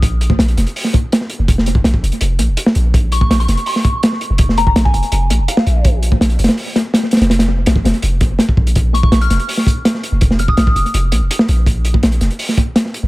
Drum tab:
HH |x---x---x-x-x-x-o---x---x---x---|x---x---x---x-x-x---x---x---x---|x---x---x-x-x-x-o---x---x---x---|x---x---x---x-x-x---x---x---x---|
SD |--------o---o-----o-----o-o-----|--o-----o-----------------o-----|--------o---o-----o-----o-o-----|--o-----o-----------------o-----|
BD |o-----o-------------o-----------|o-----o---o---------------------|o-----o-------------o-----------|o-----o---o---------------------|

HH |x---x---x-x-xxx-o---x---x---xxx-|x-x-----x---x-x-x---x---x-----x-|x---x---x-x-x-x-o---x---x---x---|x---x---x---x-x-x---x---x---x---|
SD |--------o----oo-----o---o-o-ooo-|o-o-----o---o-----------o-------|--------o---o-----o-----o-o-----|--o-----o-----------------o-----|
BD |o-----o-------------------------|----------o---------o-----o-o---|o-----o-------------o-----------|o-----o---o---------------------|

HH |x---x---x-x-x-x-o---x---x---x---|
SD |--------o---o-----o-----o-o-----|
BD |o-----o-------------o-----------|